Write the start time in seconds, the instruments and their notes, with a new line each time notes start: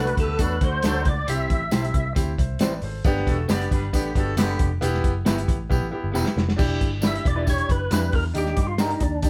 Already playing: picked electric bass C2, horn section A3 F#4 D5, grand piano A3 D4 F#4, tonewheel organ B4
0.07 closed hi-hat
0.17 picked electric bass D2, horn section B3 G4 B4, tonewheel organ A4, kick, closed hi-hat
0.38 picked electric bass E2, horn section F#3 D4 A4, grand piano A3 D4 F#4, kick, closed hi-hat, tambourine
0.42 tonewheel organ B4
0.61 picked electric bass D2, horn section D3 A3 F#4, grand piano A3 D4 F#4, tonewheel organ C5, kick, closed hi-hat
0.82 picked electric bass D2, horn section F#3 D4 A4, grand piano A3 D4 F#4, clean electric guitar A3 D4 F#4 A4, snare, closed hi-hat, tambourine
1.05 picked electric bass C#2, tonewheel organ D5, kick, closed hi-hat
1.27 picked electric bass C2, grand piano C4 E4 G4, tonewheel organ E5, closed hi-hat, tambourine
1.50 picked electric bass A1, kick, closed hi-hat
1.71 picked electric bass B1, grand piano C4 E4 G4, clean electric guitar C4 E4 G4 C5, snare, closed hi-hat, tambourine
1.84 closed hi-hat
1.94 picked electric bass C2, kick, closed hi-hat
2.15 picked electric bass D2, grand piano C4 E4 G4, kick, closed hi-hat, tambourine
2.38 picked electric bass C2, grand piano C5 E5, kick, closed hi-hat
2.59 picked electric bass A1, clean electric guitar C4 E4 G4 C5, grand piano B4 D5, snare, closed hi-hat, tambourine
2.82 picked electric bass G#1, grand piano A4 C5, open hi-hat
3.04 picked electric bass G1, grand piano B3 D4 G4, kick, closed hi-hat, tambourine
3.17 snare
3.27 picked electric bass E1, horn section A3 F#4 A4, kick, snare, closed hi-hat
3.48 picked electric bass F#1, clean electric guitar B3 D4 G4 B4, grand piano B3 D4 G4, horn section B3 G4 D5, snare, closed hi-hat, tambourine
3.62 closed hi-hat
3.69 picked electric bass G1, horn section G3 D4 B4, kick, closed hi-hat
3.92 picked electric bass A1, horn section D3 B3 G4, grand piano B3 D4 G4, kick, closed hi-hat, tambourine
4.15 picked electric bass G1, horn section A3 F#4 A4, grand piano B3 D4 G4, kick, closed hi-hat
4.36 picked electric bass F#1, horn section D3 B3 G4, grand piano B3 D4 G4, clean electric guitar B3 D4 G4 B4, snare, closed hi-hat, tambourine
4.59 picked electric bass F1, kick, closed hi-hat
4.81 picked electric bass E1, grand piano B3 E4 G4, closed hi-hat, tambourine
4.94 snare
5.04 picked electric bass F#1, kick, closed hi-hat
5.25 picked electric bass G1, clean electric guitar B3 E4 G4 B4, grand piano B3 E4 G4, snare, closed hi-hat, tambourine
5.38 closed hi-hat
5.48 picked electric bass A1, kick, closed hi-hat
5.69 picked electric bass B1, grand piano B3 E4 G4, kick, tambourine
5.82 picked electric bass A1
5.91 grand piano B3 E4 G4
6.04 picked electric bass G1
6.12 picked electric bass E1, grand piano B3 E4 G4, clean electric guitar B3 E4 G4, tambourine
6.16 clean electric guitar B4
6.26 snare
6.37 picked electric bass F1, snare
6.49 snare
6.56 picked electric bass E1, grand piano D4 E4 G4, kick, crash, tambourine
6.81 picked electric bass G1, kick, closed hi-hat
7.01 clean electric guitar G3 D4 E4 B4, grand piano D4 E4 G4, snare, closed hi-hat, tambourine
7.07 tonewheel organ E5
7.15 closed hi-hat
7.25 picked electric bass E1, tonewheel organ D5, kick, closed hi-hat
7.36 clean electric guitar G3 D4 E4 B4
7.46 grand piano D4 E4 G4, tonewheel organ C#5, kick, closed hi-hat, tambourine
7.58 closed hi-hat
7.69 picked electric bass F#1, tonewheel organ B4, kick, closed hi-hat
7.90 picked electric bass F2, clean electric guitar G3 D4 E4 B4, grand piano D4 E4 G4, tonewheel organ B4, snare, closed hi-hat, tambourine
8.12 picked electric bass E2, tonewheel organ A#4, kick, open hi-hat
8.34 picked electric bass D#2, grand piano D4 D#4 G4, closed hi-hat, tambourine
8.38 tonewheel organ G4
8.46 snare
8.57 picked electric bass G2, kick, snare, closed hi-hat
8.67 tonewheel organ F4
8.78 clean electric guitar A#3 D4 G4 A#4, grand piano D4 D#4 G4, tonewheel organ D#4, snare, closed hi-hat, tambourine
8.90 closed hi-hat
9.00 picked electric bass D#2, tonewheel organ D4, kick, closed hi-hat
9.22 grand piano D4 D#4 G4, kick, closed hi-hat, tambourine